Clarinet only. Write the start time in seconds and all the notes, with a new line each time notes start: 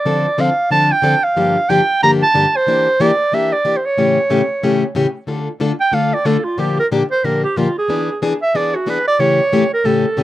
Already playing: D5
0.40 F5
0.71 A5
0.92 G5
1.24 F5
1.70 G5
2.03 A#5
2.23 A5
2.56 C5
3.01 D5
3.34 E5
3.53 D5
3.77 C5
3.86 C#5
5.81 G5
5.94 F5
6.14 D5
6.26 A4
6.44 F4
6.59 G4
6.79 A#4
7.11 C5
7.25 A#4
7.44 G4
7.58 F4
7.78 G#4
8.42 E5
8.56 D5
8.75 F#4
8.90 B4
9.08 D5
9.20 C#5
9.74 A#4
9.85 A4